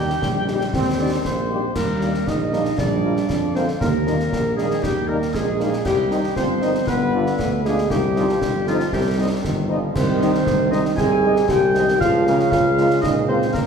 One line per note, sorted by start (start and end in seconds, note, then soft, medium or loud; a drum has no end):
0.00 0.14 D#2 medium
0.00 0.17 G3 medium
0.00 0.17 D#4 medium
0.00 0.99 D#4 medium
0.00 1.21 G4 medium
0.00 0.99 G5 medium
0.00 1.21 G5 medium
0.10 snare soft
0.22 0.65 A#1 medium
0.22 0.70 G3 medium
0.22 concert bass drum medium
0.22 snare medium
0.48 0.58 G3 medium
0.48 0.58 D#4 medium
0.48 0.58 G4 medium
0.48 snare medium
0.61 snare medium
0.73 1.16 D#2 medium
0.73 1.21 C4 medium
0.73 concert bass drum medium
0.73 snare medium
0.99 1.08 G3 medium
0.99 1.27 D4 medium
0.99 1.08 D#4 medium
0.99 1.08 G4 soft
0.99 1.11 D5 medium
1.24 1.67 A#1 medium
1.24 1.76 A#3 medium
1.24 1.74 C4 medium
1.24 1.72 C5 medium
1.24 concert bass drum medium
1.24 snare medium
1.51 1.60 G3 medium
1.51 1.60 D#4 medium
1.51 1.60 G4 medium
1.75 2.18 D#2 medium
1.75 2.24 G3 medium
1.75 2.23 A#3 medium
1.75 2.27 A#4 medium
1.75 concert bass drum medium
1.75 snare medium
1.75 crash soft
2.00 2.11 G3 medium
2.00 2.11 A#3 soft
2.00 2.11 D#4 soft
2.00 2.10 A#4 medium
2.00 snare soft
2.14 snare soft
2.27 2.70 A#1 medium
2.27 2.39 D#3 medium
2.27 2.79 D#4 medium
2.27 2.78 D#5 medium
2.27 concert bass drum medium
2.27 snare medium
2.53 2.76 F3 medium
2.53 2.62 G3 medium
2.53 2.62 A#3 medium
2.53 2.62 D#4 medium
2.53 2.62 A#4 medium
2.53 snare medium
2.65 snare soft
2.77 3.21 A#1 medium
2.77 3.29 G3 medium
2.77 3.55 D4 medium
2.77 3.51 D5 medium
2.77 concert bass drum medium
2.77 snare medium
3.03 3.12 G#3 medium
3.03 3.13 A#3 medium
3.03 3.12 F4 soft
3.03 3.13 A#4 medium
3.17 snare soft
3.30 3.72 F2 medium
3.30 3.55 F3 medium
3.30 concert bass drum medium
3.30 snare medium
3.54 3.78 D3 medium
3.54 3.64 G#3 medium
3.54 3.64 A#3 medium
3.54 3.67 C4 medium
3.54 3.65 F4 medium
3.54 3.64 A#4 medium
3.54 3.67 C5 medium
3.54 snare soft
3.68 snare soft
3.80 4.23 D#2 medium
3.80 3.92 D#3 medium
3.80 4.54 A#3 medium
3.80 4.53 A#4 medium
3.80 concert bass drum medium
3.80 snare medium
4.05 4.17 F3 medium
4.05 4.16 G3 medium
4.05 4.15 A#3 medium
4.05 4.15 D#4 soft
4.05 4.16 A#4 medium
4.05 snare soft
4.20 snare soft
4.31 4.74 A#1 medium
4.31 4.43 G3 medium
4.31 concert bass drum medium
4.31 snare medium
4.56 5.30 D#3 medium
4.56 4.67 G3 medium
4.56 4.85 G#3 medium
4.56 4.67 A#3 medium
4.56 4.67 D#4 medium
4.56 4.83 G#4 medium
4.56 4.67 A#4 medium
4.56 snare soft
4.71 snare soft
4.83 5.26 D#2 medium
4.83 5.11 G3 medium
4.83 5.08 G4 medium
4.83 concert bass drum medium
4.83 snare medium
5.08 5.18 G3 medium
5.08 5.17 A#3 medium
5.08 5.36 A#3 medium
5.08 5.17 D#4 medium
5.08 5.34 A#4 medium
5.08 5.18 A#4 soft
5.22 snare soft
5.34 5.77 A#1 medium
5.34 5.45 C3 medium
5.34 5.84 G#3 medium
5.34 5.86 G#4 medium
5.34 concert bass drum medium
5.34 snare medium
5.60 5.84 A#2 soft
5.60 5.69 G3 medium
5.60 5.69 A#3 medium
5.60 5.69 D#4 medium
5.60 5.69 A#4 medium
5.60 snare medium
5.73 snare soft
5.85 6.24 C2 medium
5.85 5.97 C3 medium
5.85 6.33 G3 medium
5.85 6.33 G4 medium
5.85 concert bass drum medium
5.85 snare medium
5.85 crash soft
6.10 6.23 D#3 medium
6.10 6.20 G3 medium
6.10 6.20 C4 medium
6.10 6.20 D#4 medium
6.10 6.20 D#5 medium
6.10 snare soft
6.24 snare soft
6.36 6.79 G1 medium
6.36 6.60 F3 medium
6.36 6.84 C4 medium
6.36 6.84 C5 medium
6.36 concert bass drum medium
6.36 snare medium
6.61 6.74 D#3 medium
6.61 6.71 G3 medium
6.61 6.71 C4 medium
6.61 6.71 D#4 medium
6.61 6.71 D#5 medium
6.61 snare medium
6.75 snare soft
6.87 7.30 G1 medium
6.87 7.00 D3 medium
6.87 7.61 B3 loud
6.87 7.61 B4 medium
6.87 concert bass drum medium
6.87 snare medium
7.12 7.86 D3 medium
7.12 7.24 G3 medium
7.12 7.24 D4 medium
7.12 7.24 F4 medium
7.12 7.24 D5 medium
7.26 snare soft
7.38 7.81 D2 medium
7.38 concert bass drum medium
7.38 snare medium
7.63 7.74 G3 medium
7.63 7.92 G#3 medium
7.63 7.74 D4 medium
7.63 7.75 F4 medium
7.63 7.89 G#4 medium
7.63 7.75 D5 medium
7.63 snare soft
7.78 snare soft
7.90 8.33 C2 medium
7.90 8.01 D#3 medium
7.90 8.67 G3 medium
7.90 8.63 G4 medium
7.90 concert bass drum medium
7.90 snare medium
8.16 8.40 F3 medium
8.16 8.25 G3 medium
8.16 8.25 C4 medium
8.16 8.25 D#4 medium
8.16 8.25 D#5 medium
8.16 snare soft
8.29 snare soft
8.41 8.84 G1 medium
8.41 8.53 D#3 medium
8.41 concert bass drum medium
8.41 snare medium
8.67 8.79 D3 medium
8.67 8.91 F3 medium
8.67 8.77 G3 medium
8.67 8.77 C4 medium
8.67 8.77 D#4 medium
8.67 8.91 F4 medium
8.67 8.78 D#5 medium
8.67 snare medium
8.80 snare medium
8.92 9.35 C2 medium
8.92 9.40 C3 medium
8.92 9.04 G3 medium
8.92 9.17 G4 medium
8.92 concert bass drum medium
8.92 snare medium
9.17 9.27 G3 medium
9.17 9.27 C4 medium
9.17 9.27 D#4 medium
9.17 9.29 D#5 medium
9.43 9.87 G1 medium
9.43 9.68 D#3 medium
9.43 concert bass drum medium
9.43 snare medium
9.68 9.96 F3 medium
9.68 9.78 G3 medium
9.68 9.78 C4 medium
9.68 9.78 D#4 medium
9.68 9.80 D#5 medium
9.94 10.38 C2 medium
9.94 10.94 D#3 medium
9.94 10.74 C4 medium
9.94 10.68 C5 medium
9.94 concert bass drum medium
9.94 snare medium
9.94 crash soft
10.20 10.30 G#3 medium
10.20 10.30 C4 medium
10.20 10.30 D#4 medium
10.20 10.31 D#5 medium
10.20 snare medium
10.35 snare soft
10.46 10.89 C2 medium
10.46 concert bass drum medium
10.46 snare medium
10.71 10.81 G#3 medium
10.71 10.81 C4 medium
10.71 10.81 D#4 medium
10.71 11.00 D#4 loud
10.71 10.83 D#5 medium
10.71 snare medium
10.85 snare soft
10.97 11.41 C2 medium
10.97 11.46 C3 medium
10.97 11.48 G#4 loud
10.97 11.45 G#5 medium
10.97 concert bass drum medium
10.97 snare medium
11.22 11.32 G#3 medium
11.22 11.32 C4 medium
11.22 11.32 D#4 medium
11.22 11.35 D#5 medium
11.36 snare soft
11.48 11.93 C2 medium
11.48 11.61 F3 medium
11.48 12.00 G4 loud
11.48 12.01 G5 medium
11.48 concert bass drum medium
11.48 snare medium
11.75 12.00 D#3 medium
11.75 11.84 G#3 medium
11.75 11.84 C4 medium
11.75 11.84 D#4 medium
11.75 11.87 D#5 medium
11.75 snare medium
11.88 snare medium
11.99 12.44 C#2 medium
11.99 12.26 F3 medium
11.99 12.51 F4 loud
11.99 12.48 F5 medium
11.99 concert bass drum medium
11.99 snare medium
12.26 12.99 C#3 medium
12.26 12.35 G#3 medium
12.26 12.36 A#3 medium
12.26 12.36 F4 medium
12.26 12.38 A#4 medium
12.26 snare medium
12.39 snare soft
12.51 12.90 C#2 medium
12.51 13.04 F4 loud
12.51 12.99 F5 medium
12.51 concert bass drum medium
12.51 snare medium
12.78 12.88 G#3 medium
12.78 12.87 A#3 medium
12.78 12.88 F4 medium
12.78 12.88 A#4 medium
12.78 snare soft
12.90 snare soft
13.01 13.46 C#2 medium
13.01 13.51 A#2 medium
13.01 13.28 D#4 loud
13.01 13.13 D#5 medium
13.01 concert bass drum medium
13.01 snare medium
13.28 13.38 G#3 medium
13.28 13.39 A#3 medium
13.28 13.57 C4 medium
13.28 13.38 F4 medium
13.28 13.39 A#4 medium
13.28 13.53 C5 medium
13.42 snare soft
13.54 13.67 C#2 medium
13.54 13.67 C#3 medium
13.54 13.67 A#3 medium
13.54 13.67 A#4 medium
13.54 concert bass drum medium
13.54 snare medium